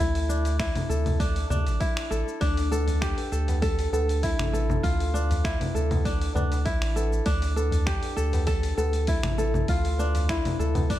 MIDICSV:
0, 0, Header, 1, 6, 480
1, 0, Start_track
1, 0, Tempo, 606061
1, 1912, Time_signature, 4, 2, 24, 8
1, 8704, End_track
2, 0, Start_track
2, 0, Title_t, "Kora"
2, 0, Program_c, 0, 46
2, 0, Note_on_c, 0, 64, 102
2, 0, Note_on_c, 0, 69, 82
2, 231, Note_on_c, 0, 62, 80
2, 467, Note_off_c, 0, 64, 0
2, 471, Note_on_c, 0, 64, 79
2, 705, Note_off_c, 0, 69, 0
2, 709, Note_on_c, 0, 69, 71
2, 946, Note_off_c, 0, 62, 0
2, 949, Note_on_c, 0, 62, 86
2, 1187, Note_off_c, 0, 62, 0
2, 1190, Note_on_c, 0, 62, 81
2, 1425, Note_off_c, 0, 64, 0
2, 1428, Note_on_c, 0, 64, 86
2, 1665, Note_off_c, 0, 69, 0
2, 1668, Note_on_c, 0, 69, 78
2, 1905, Note_off_c, 0, 62, 0
2, 1908, Note_on_c, 0, 62, 104
2, 2148, Note_off_c, 0, 69, 0
2, 2151, Note_on_c, 0, 69, 80
2, 2387, Note_on_c, 0, 67, 79
2, 2626, Note_off_c, 0, 69, 0
2, 2629, Note_on_c, 0, 69, 75
2, 2669, Note_off_c, 0, 64, 0
2, 2865, Note_off_c, 0, 69, 0
2, 2868, Note_on_c, 0, 69, 107
2, 3111, Note_off_c, 0, 69, 0
2, 3114, Note_on_c, 0, 69, 74
2, 3238, Note_off_c, 0, 62, 0
2, 3350, Note_on_c, 0, 64, 91
2, 3506, Note_off_c, 0, 67, 0
2, 3587, Note_off_c, 0, 69, 0
2, 3590, Note_on_c, 0, 69, 80
2, 3828, Note_on_c, 0, 65, 101
2, 3876, Note_off_c, 0, 64, 0
2, 4070, Note_on_c, 0, 62, 78
2, 4312, Note_on_c, 0, 64, 77
2, 4359, Note_off_c, 0, 65, 0
2, 4549, Note_off_c, 0, 69, 0
2, 4552, Note_on_c, 0, 69, 73
2, 4790, Note_off_c, 0, 62, 0
2, 4793, Note_on_c, 0, 62, 84
2, 5030, Note_off_c, 0, 62, 0
2, 5033, Note_on_c, 0, 62, 80
2, 5267, Note_off_c, 0, 64, 0
2, 5270, Note_on_c, 0, 64, 91
2, 5507, Note_off_c, 0, 69, 0
2, 5511, Note_on_c, 0, 69, 75
2, 5745, Note_off_c, 0, 62, 0
2, 5748, Note_on_c, 0, 62, 106
2, 5987, Note_off_c, 0, 69, 0
2, 5990, Note_on_c, 0, 69, 76
2, 6228, Note_on_c, 0, 67, 83
2, 6463, Note_off_c, 0, 69, 0
2, 6466, Note_on_c, 0, 69, 75
2, 6511, Note_off_c, 0, 64, 0
2, 6706, Note_off_c, 0, 69, 0
2, 6709, Note_on_c, 0, 69, 108
2, 6947, Note_off_c, 0, 69, 0
2, 6950, Note_on_c, 0, 69, 77
2, 7078, Note_off_c, 0, 62, 0
2, 7193, Note_on_c, 0, 64, 93
2, 7347, Note_off_c, 0, 67, 0
2, 7427, Note_off_c, 0, 69, 0
2, 7430, Note_on_c, 0, 69, 81
2, 7675, Note_on_c, 0, 65, 101
2, 7722, Note_off_c, 0, 64, 0
2, 7915, Note_on_c, 0, 62, 77
2, 8152, Note_on_c, 0, 64, 76
2, 8199, Note_off_c, 0, 65, 0
2, 8388, Note_off_c, 0, 69, 0
2, 8391, Note_on_c, 0, 69, 79
2, 8628, Note_off_c, 0, 62, 0
2, 8632, Note_on_c, 0, 62, 88
2, 8704, Note_off_c, 0, 62, 0
2, 8704, Note_off_c, 0, 64, 0
2, 8704, Note_off_c, 0, 69, 0
2, 8704, End_track
3, 0, Start_track
3, 0, Title_t, "Singing bowl"
3, 0, Program_c, 1, 14
3, 1908, Note_on_c, 1, 62, 71
3, 8704, Note_off_c, 1, 62, 0
3, 8704, End_track
4, 0, Start_track
4, 0, Title_t, "Analog synth bass"
4, 0, Program_c, 2, 38
4, 0, Note_on_c, 2, 38, 100
4, 554, Note_off_c, 2, 38, 0
4, 710, Note_on_c, 2, 38, 89
4, 1152, Note_off_c, 2, 38, 0
4, 1189, Note_on_c, 2, 38, 82
4, 1320, Note_on_c, 2, 33, 95
4, 1332, Note_off_c, 2, 38, 0
4, 1408, Note_off_c, 2, 33, 0
4, 1670, Note_on_c, 2, 33, 81
4, 1771, Note_off_c, 2, 33, 0
4, 1912, Note_on_c, 2, 38, 100
4, 2475, Note_off_c, 2, 38, 0
4, 2632, Note_on_c, 2, 38, 86
4, 3073, Note_off_c, 2, 38, 0
4, 3110, Note_on_c, 2, 38, 83
4, 3434, Note_off_c, 2, 38, 0
4, 3479, Note_on_c, 2, 33, 113
4, 3792, Note_off_c, 2, 33, 0
4, 3834, Note_on_c, 2, 38, 103
4, 4396, Note_off_c, 2, 38, 0
4, 4551, Note_on_c, 2, 38, 88
4, 4992, Note_off_c, 2, 38, 0
4, 5029, Note_on_c, 2, 38, 85
4, 5354, Note_off_c, 2, 38, 0
4, 5393, Note_on_c, 2, 33, 118
4, 5710, Note_off_c, 2, 33, 0
4, 5753, Note_on_c, 2, 38, 104
4, 6316, Note_off_c, 2, 38, 0
4, 6473, Note_on_c, 2, 38, 86
4, 6913, Note_off_c, 2, 38, 0
4, 6951, Note_on_c, 2, 38, 78
4, 7275, Note_off_c, 2, 38, 0
4, 7316, Note_on_c, 2, 33, 109
4, 7631, Note_off_c, 2, 33, 0
4, 7671, Note_on_c, 2, 38, 104
4, 8234, Note_off_c, 2, 38, 0
4, 8388, Note_on_c, 2, 38, 86
4, 8704, Note_off_c, 2, 38, 0
4, 8704, End_track
5, 0, Start_track
5, 0, Title_t, "Tabla"
5, 2144, Note_on_c, 9, 63, 68
5, 2148, Note_on_c, 9, 60, 64
5, 2223, Note_off_c, 9, 63, 0
5, 2227, Note_off_c, 9, 60, 0
5, 2273, Note_on_c, 9, 64, 88
5, 2353, Note_off_c, 9, 64, 0
5, 2515, Note_on_c, 9, 63, 57
5, 2594, Note_off_c, 9, 63, 0
5, 2759, Note_on_c, 9, 64, 98
5, 2763, Note_on_c, 9, 60, 67
5, 2838, Note_off_c, 9, 64, 0
5, 2842, Note_off_c, 9, 60, 0
5, 3111, Note_on_c, 9, 60, 76
5, 3190, Note_off_c, 9, 60, 0
5, 3593, Note_on_c, 9, 63, 59
5, 3672, Note_off_c, 9, 63, 0
5, 4076, Note_on_c, 9, 63, 70
5, 4156, Note_off_c, 9, 63, 0
5, 4205, Note_on_c, 9, 64, 88
5, 4285, Note_off_c, 9, 64, 0
5, 4437, Note_on_c, 9, 63, 68
5, 4516, Note_off_c, 9, 63, 0
5, 4681, Note_on_c, 9, 60, 67
5, 4688, Note_on_c, 9, 64, 83
5, 4760, Note_off_c, 9, 60, 0
5, 4768, Note_off_c, 9, 64, 0
5, 5029, Note_on_c, 9, 60, 82
5, 5108, Note_off_c, 9, 60, 0
5, 5164, Note_on_c, 9, 60, 66
5, 5243, Note_off_c, 9, 60, 0
5, 5516, Note_on_c, 9, 60, 57
5, 5596, Note_off_c, 9, 60, 0
5, 5989, Note_on_c, 9, 63, 67
5, 5998, Note_on_c, 9, 60, 61
5, 6068, Note_off_c, 9, 63, 0
5, 6077, Note_off_c, 9, 60, 0
5, 6108, Note_on_c, 9, 64, 97
5, 6187, Note_off_c, 9, 64, 0
5, 6358, Note_on_c, 9, 63, 67
5, 6437, Note_off_c, 9, 63, 0
5, 6600, Note_on_c, 9, 60, 72
5, 6600, Note_on_c, 9, 64, 83
5, 6679, Note_off_c, 9, 64, 0
5, 6680, Note_off_c, 9, 60, 0
5, 6949, Note_on_c, 9, 60, 74
5, 7029, Note_off_c, 9, 60, 0
5, 7432, Note_on_c, 9, 63, 69
5, 7511, Note_off_c, 9, 63, 0
5, 7907, Note_on_c, 9, 63, 74
5, 7986, Note_off_c, 9, 63, 0
5, 8035, Note_on_c, 9, 64, 87
5, 8114, Note_off_c, 9, 64, 0
5, 8275, Note_on_c, 9, 63, 73
5, 8355, Note_off_c, 9, 63, 0
5, 8513, Note_on_c, 9, 60, 75
5, 8516, Note_on_c, 9, 64, 96
5, 8593, Note_off_c, 9, 60, 0
5, 8595, Note_off_c, 9, 64, 0
5, 8704, End_track
6, 0, Start_track
6, 0, Title_t, "Drums"
6, 0, Note_on_c, 9, 82, 49
6, 79, Note_off_c, 9, 82, 0
6, 120, Note_on_c, 9, 46, 43
6, 127, Note_on_c, 9, 82, 23
6, 199, Note_off_c, 9, 46, 0
6, 206, Note_off_c, 9, 82, 0
6, 236, Note_on_c, 9, 82, 86
6, 315, Note_off_c, 9, 82, 0
6, 357, Note_on_c, 9, 46, 30
6, 364, Note_on_c, 9, 82, 37
6, 436, Note_off_c, 9, 46, 0
6, 443, Note_off_c, 9, 82, 0
6, 472, Note_on_c, 9, 26, 80
6, 472, Note_on_c, 9, 36, 106
6, 472, Note_on_c, 9, 46, 69
6, 479, Note_on_c, 9, 82, 50
6, 551, Note_off_c, 9, 26, 0
6, 551, Note_off_c, 9, 36, 0
6, 551, Note_off_c, 9, 46, 0
6, 558, Note_off_c, 9, 82, 0
6, 598, Note_on_c, 9, 46, 44
6, 598, Note_on_c, 9, 64, 76
6, 605, Note_on_c, 9, 82, 21
6, 677, Note_off_c, 9, 46, 0
6, 677, Note_off_c, 9, 64, 0
6, 684, Note_off_c, 9, 82, 0
6, 718, Note_on_c, 9, 82, 79
6, 798, Note_off_c, 9, 82, 0
6, 839, Note_on_c, 9, 46, 29
6, 839, Note_on_c, 9, 64, 69
6, 846, Note_on_c, 9, 82, 34
6, 918, Note_off_c, 9, 46, 0
6, 918, Note_off_c, 9, 64, 0
6, 925, Note_off_c, 9, 82, 0
6, 950, Note_on_c, 9, 36, 108
6, 951, Note_on_c, 9, 46, 72
6, 958, Note_on_c, 9, 82, 49
6, 1029, Note_off_c, 9, 36, 0
6, 1030, Note_off_c, 9, 46, 0
6, 1038, Note_off_c, 9, 82, 0
6, 1077, Note_on_c, 9, 46, 45
6, 1084, Note_on_c, 9, 82, 24
6, 1157, Note_off_c, 9, 46, 0
6, 1164, Note_off_c, 9, 82, 0
6, 1191, Note_on_c, 9, 64, 63
6, 1199, Note_on_c, 9, 82, 87
6, 1271, Note_off_c, 9, 64, 0
6, 1278, Note_off_c, 9, 82, 0
6, 1319, Note_on_c, 9, 46, 29
6, 1326, Note_on_c, 9, 82, 33
6, 1398, Note_off_c, 9, 46, 0
6, 1405, Note_off_c, 9, 82, 0
6, 1431, Note_on_c, 9, 36, 109
6, 1431, Note_on_c, 9, 46, 64
6, 1438, Note_on_c, 9, 82, 45
6, 1510, Note_off_c, 9, 36, 0
6, 1510, Note_off_c, 9, 46, 0
6, 1517, Note_off_c, 9, 82, 0
6, 1560, Note_on_c, 9, 26, 80
6, 1560, Note_on_c, 9, 46, 42
6, 1567, Note_on_c, 9, 82, 24
6, 1639, Note_off_c, 9, 26, 0
6, 1639, Note_off_c, 9, 46, 0
6, 1646, Note_off_c, 9, 82, 0
6, 1678, Note_on_c, 9, 82, 84
6, 1757, Note_off_c, 9, 82, 0
6, 1808, Note_on_c, 9, 82, 33
6, 1887, Note_off_c, 9, 82, 0
6, 1910, Note_on_c, 9, 46, 64
6, 1911, Note_on_c, 9, 36, 112
6, 1917, Note_on_c, 9, 82, 43
6, 1989, Note_off_c, 9, 46, 0
6, 1990, Note_off_c, 9, 36, 0
6, 1996, Note_off_c, 9, 82, 0
6, 2039, Note_on_c, 9, 46, 44
6, 2046, Note_on_c, 9, 82, 22
6, 2118, Note_off_c, 9, 46, 0
6, 2125, Note_off_c, 9, 82, 0
6, 2158, Note_on_c, 9, 82, 83
6, 2237, Note_off_c, 9, 82, 0
6, 2278, Note_on_c, 9, 46, 31
6, 2285, Note_on_c, 9, 82, 35
6, 2357, Note_off_c, 9, 46, 0
6, 2364, Note_off_c, 9, 82, 0
6, 2391, Note_on_c, 9, 26, 84
6, 2391, Note_on_c, 9, 46, 72
6, 2392, Note_on_c, 9, 36, 111
6, 2398, Note_on_c, 9, 82, 47
6, 2470, Note_off_c, 9, 26, 0
6, 2470, Note_off_c, 9, 46, 0
6, 2471, Note_off_c, 9, 36, 0
6, 2477, Note_off_c, 9, 82, 0
6, 2517, Note_on_c, 9, 46, 44
6, 2524, Note_on_c, 9, 82, 22
6, 2596, Note_off_c, 9, 46, 0
6, 2603, Note_off_c, 9, 82, 0
6, 2635, Note_on_c, 9, 82, 73
6, 2714, Note_off_c, 9, 82, 0
6, 2757, Note_on_c, 9, 46, 29
6, 2764, Note_on_c, 9, 82, 32
6, 2837, Note_off_c, 9, 46, 0
6, 2844, Note_off_c, 9, 82, 0
6, 2870, Note_on_c, 9, 46, 68
6, 2873, Note_on_c, 9, 36, 111
6, 2877, Note_on_c, 9, 82, 46
6, 2949, Note_off_c, 9, 46, 0
6, 2952, Note_off_c, 9, 36, 0
6, 2956, Note_off_c, 9, 82, 0
6, 2999, Note_on_c, 9, 46, 42
6, 3006, Note_on_c, 9, 82, 22
6, 3078, Note_off_c, 9, 46, 0
6, 3085, Note_off_c, 9, 82, 0
6, 3119, Note_on_c, 9, 82, 82
6, 3198, Note_off_c, 9, 82, 0
6, 3242, Note_on_c, 9, 46, 30
6, 3249, Note_on_c, 9, 82, 32
6, 3321, Note_off_c, 9, 46, 0
6, 3328, Note_off_c, 9, 82, 0
6, 3352, Note_on_c, 9, 46, 60
6, 3353, Note_on_c, 9, 36, 108
6, 3359, Note_on_c, 9, 82, 47
6, 3431, Note_off_c, 9, 46, 0
6, 3432, Note_off_c, 9, 36, 0
6, 3438, Note_off_c, 9, 82, 0
6, 3480, Note_on_c, 9, 26, 78
6, 3480, Note_on_c, 9, 46, 44
6, 3480, Note_on_c, 9, 64, 81
6, 3487, Note_on_c, 9, 82, 23
6, 3560, Note_off_c, 9, 26, 0
6, 3560, Note_off_c, 9, 46, 0
6, 3560, Note_off_c, 9, 64, 0
6, 3567, Note_off_c, 9, 82, 0
6, 3600, Note_on_c, 9, 82, 80
6, 3679, Note_off_c, 9, 82, 0
6, 3720, Note_on_c, 9, 64, 79
6, 3727, Note_on_c, 9, 82, 33
6, 3799, Note_off_c, 9, 64, 0
6, 3806, Note_off_c, 9, 82, 0
6, 3834, Note_on_c, 9, 46, 68
6, 3835, Note_on_c, 9, 36, 110
6, 3841, Note_on_c, 9, 82, 44
6, 3914, Note_off_c, 9, 36, 0
6, 3914, Note_off_c, 9, 46, 0
6, 3921, Note_off_c, 9, 82, 0
6, 3963, Note_on_c, 9, 46, 41
6, 3970, Note_on_c, 9, 82, 21
6, 4043, Note_off_c, 9, 46, 0
6, 4050, Note_off_c, 9, 82, 0
6, 4083, Note_on_c, 9, 82, 77
6, 4162, Note_off_c, 9, 82, 0
6, 4204, Note_on_c, 9, 46, 32
6, 4211, Note_on_c, 9, 82, 34
6, 4283, Note_off_c, 9, 46, 0
6, 4290, Note_off_c, 9, 82, 0
6, 4314, Note_on_c, 9, 36, 107
6, 4316, Note_on_c, 9, 26, 81
6, 4316, Note_on_c, 9, 46, 68
6, 4323, Note_on_c, 9, 82, 46
6, 4393, Note_off_c, 9, 36, 0
6, 4395, Note_off_c, 9, 26, 0
6, 4395, Note_off_c, 9, 46, 0
6, 4402, Note_off_c, 9, 82, 0
6, 4444, Note_on_c, 9, 46, 45
6, 4444, Note_on_c, 9, 64, 82
6, 4451, Note_on_c, 9, 82, 22
6, 4523, Note_off_c, 9, 46, 0
6, 4523, Note_off_c, 9, 64, 0
6, 4530, Note_off_c, 9, 82, 0
6, 4562, Note_on_c, 9, 82, 73
6, 4641, Note_off_c, 9, 82, 0
6, 4680, Note_on_c, 9, 46, 29
6, 4680, Note_on_c, 9, 64, 78
6, 4687, Note_on_c, 9, 82, 30
6, 4759, Note_off_c, 9, 46, 0
6, 4759, Note_off_c, 9, 64, 0
6, 4766, Note_off_c, 9, 82, 0
6, 4794, Note_on_c, 9, 36, 109
6, 4795, Note_on_c, 9, 46, 69
6, 4802, Note_on_c, 9, 82, 46
6, 4873, Note_off_c, 9, 36, 0
6, 4875, Note_off_c, 9, 46, 0
6, 4881, Note_off_c, 9, 82, 0
6, 4922, Note_on_c, 9, 46, 47
6, 4929, Note_on_c, 9, 82, 23
6, 5001, Note_off_c, 9, 46, 0
6, 5008, Note_off_c, 9, 82, 0
6, 5034, Note_on_c, 9, 64, 68
6, 5041, Note_on_c, 9, 82, 71
6, 5113, Note_off_c, 9, 64, 0
6, 5120, Note_off_c, 9, 82, 0
6, 5161, Note_on_c, 9, 46, 32
6, 5168, Note_on_c, 9, 82, 33
6, 5241, Note_off_c, 9, 46, 0
6, 5248, Note_off_c, 9, 82, 0
6, 5272, Note_on_c, 9, 46, 65
6, 5273, Note_on_c, 9, 36, 111
6, 5279, Note_on_c, 9, 82, 43
6, 5351, Note_off_c, 9, 46, 0
6, 5353, Note_off_c, 9, 36, 0
6, 5358, Note_off_c, 9, 82, 0
6, 5400, Note_on_c, 9, 26, 72
6, 5400, Note_on_c, 9, 46, 44
6, 5407, Note_on_c, 9, 82, 23
6, 5479, Note_off_c, 9, 26, 0
6, 5479, Note_off_c, 9, 46, 0
6, 5486, Note_off_c, 9, 82, 0
6, 5518, Note_on_c, 9, 82, 82
6, 5597, Note_off_c, 9, 82, 0
6, 5645, Note_on_c, 9, 82, 33
6, 5724, Note_off_c, 9, 82, 0
6, 5748, Note_on_c, 9, 46, 70
6, 5753, Note_on_c, 9, 36, 107
6, 5755, Note_on_c, 9, 82, 44
6, 5827, Note_off_c, 9, 46, 0
6, 5832, Note_off_c, 9, 36, 0
6, 5834, Note_off_c, 9, 82, 0
6, 5877, Note_on_c, 9, 46, 44
6, 5884, Note_on_c, 9, 82, 22
6, 5956, Note_off_c, 9, 46, 0
6, 5964, Note_off_c, 9, 82, 0
6, 5998, Note_on_c, 9, 82, 82
6, 6077, Note_off_c, 9, 82, 0
6, 6117, Note_on_c, 9, 46, 34
6, 6124, Note_on_c, 9, 82, 33
6, 6196, Note_off_c, 9, 46, 0
6, 6203, Note_off_c, 9, 82, 0
6, 6231, Note_on_c, 9, 26, 83
6, 6231, Note_on_c, 9, 46, 71
6, 6232, Note_on_c, 9, 36, 103
6, 6238, Note_on_c, 9, 82, 45
6, 6310, Note_off_c, 9, 26, 0
6, 6310, Note_off_c, 9, 46, 0
6, 6312, Note_off_c, 9, 36, 0
6, 6317, Note_off_c, 9, 82, 0
6, 6357, Note_on_c, 9, 46, 49
6, 6364, Note_on_c, 9, 82, 22
6, 6436, Note_off_c, 9, 46, 0
6, 6443, Note_off_c, 9, 82, 0
6, 6475, Note_on_c, 9, 82, 70
6, 6554, Note_off_c, 9, 82, 0
6, 6598, Note_on_c, 9, 46, 32
6, 6605, Note_on_c, 9, 82, 30
6, 6677, Note_off_c, 9, 46, 0
6, 6684, Note_off_c, 9, 82, 0
6, 6707, Note_on_c, 9, 46, 72
6, 6712, Note_on_c, 9, 36, 99
6, 6714, Note_on_c, 9, 82, 45
6, 6786, Note_off_c, 9, 46, 0
6, 6791, Note_off_c, 9, 36, 0
6, 6793, Note_off_c, 9, 82, 0
6, 6837, Note_on_c, 9, 46, 47
6, 6844, Note_on_c, 9, 82, 22
6, 6917, Note_off_c, 9, 46, 0
6, 6924, Note_off_c, 9, 82, 0
6, 6955, Note_on_c, 9, 82, 75
6, 7034, Note_off_c, 9, 82, 0
6, 7074, Note_on_c, 9, 46, 33
6, 7081, Note_on_c, 9, 82, 31
6, 7153, Note_off_c, 9, 46, 0
6, 7160, Note_off_c, 9, 82, 0
6, 7186, Note_on_c, 9, 46, 70
6, 7191, Note_on_c, 9, 36, 105
6, 7193, Note_on_c, 9, 82, 42
6, 7265, Note_off_c, 9, 46, 0
6, 7270, Note_off_c, 9, 36, 0
6, 7272, Note_off_c, 9, 82, 0
6, 7314, Note_on_c, 9, 26, 76
6, 7314, Note_on_c, 9, 46, 49
6, 7314, Note_on_c, 9, 64, 90
6, 7321, Note_on_c, 9, 82, 22
6, 7393, Note_off_c, 9, 26, 0
6, 7393, Note_off_c, 9, 46, 0
6, 7393, Note_off_c, 9, 64, 0
6, 7400, Note_off_c, 9, 82, 0
6, 7435, Note_on_c, 9, 82, 74
6, 7514, Note_off_c, 9, 82, 0
6, 7557, Note_on_c, 9, 64, 81
6, 7564, Note_on_c, 9, 82, 29
6, 7636, Note_off_c, 9, 64, 0
6, 7644, Note_off_c, 9, 82, 0
6, 7669, Note_on_c, 9, 46, 67
6, 7672, Note_on_c, 9, 36, 103
6, 7676, Note_on_c, 9, 82, 41
6, 7748, Note_off_c, 9, 46, 0
6, 7751, Note_off_c, 9, 36, 0
6, 7755, Note_off_c, 9, 82, 0
6, 7800, Note_on_c, 9, 46, 45
6, 7807, Note_on_c, 9, 82, 21
6, 7879, Note_off_c, 9, 46, 0
6, 7886, Note_off_c, 9, 82, 0
6, 7917, Note_on_c, 9, 82, 75
6, 7996, Note_off_c, 9, 82, 0
6, 8037, Note_on_c, 9, 46, 35
6, 8044, Note_on_c, 9, 82, 31
6, 8116, Note_off_c, 9, 46, 0
6, 8123, Note_off_c, 9, 82, 0
6, 8151, Note_on_c, 9, 26, 82
6, 8151, Note_on_c, 9, 46, 72
6, 8152, Note_on_c, 9, 36, 97
6, 8158, Note_on_c, 9, 82, 48
6, 8231, Note_off_c, 9, 26, 0
6, 8231, Note_off_c, 9, 36, 0
6, 8231, Note_off_c, 9, 46, 0
6, 8238, Note_off_c, 9, 82, 0
6, 8279, Note_on_c, 9, 46, 46
6, 8279, Note_on_c, 9, 64, 81
6, 8286, Note_on_c, 9, 82, 22
6, 8358, Note_off_c, 9, 46, 0
6, 8358, Note_off_c, 9, 64, 0
6, 8365, Note_off_c, 9, 82, 0
6, 8399, Note_on_c, 9, 82, 74
6, 8478, Note_off_c, 9, 82, 0
6, 8516, Note_on_c, 9, 46, 35
6, 8516, Note_on_c, 9, 64, 80
6, 8523, Note_on_c, 9, 82, 31
6, 8595, Note_off_c, 9, 46, 0
6, 8595, Note_off_c, 9, 64, 0
6, 8602, Note_off_c, 9, 82, 0
6, 8632, Note_on_c, 9, 36, 104
6, 8633, Note_on_c, 9, 46, 73
6, 8640, Note_on_c, 9, 82, 46
6, 8704, Note_off_c, 9, 36, 0
6, 8704, Note_off_c, 9, 46, 0
6, 8704, Note_off_c, 9, 82, 0
6, 8704, End_track
0, 0, End_of_file